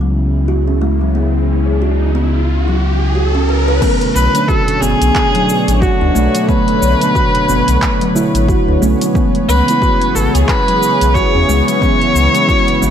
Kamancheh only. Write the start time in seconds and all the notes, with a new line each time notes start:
4.15 B4
4.48 A4
4.81 G#4
5.81 F#4
6.48 B4
9.48 B4
10.15 A4
10.34 G#4
10.48 B4
11.14 C#5
11.67 C#5